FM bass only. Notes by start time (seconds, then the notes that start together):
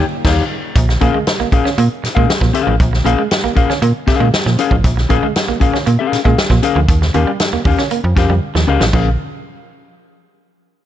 0.25 D#2
0.76 A#1
1.02 A#1
1.40 A#1
1.52 A#1
1.78 A#2
2.04 A#2
2.17 A#2
2.41 A#2
2.67 A1
2.80 A#1
3.05 A#1
3.44 A#1
3.57 A#1
3.82 A#2
4.08 A#2
4.20 A#2
4.46 A#2
4.71 A1
4.84 A#1
5.10 A#1
5.49 A#1
5.61 A#1
5.87 A#2
6.13 A#2
6.25 A#2
6.50 A#2
6.76 D2
6.89 D#2
7.15 D#2
7.53 D#2
7.65 D#2
8.04 F2
8.17 F2
8.29 F2
8.55 D#2
8.68 C#2
8.80 A1
8.94 A#1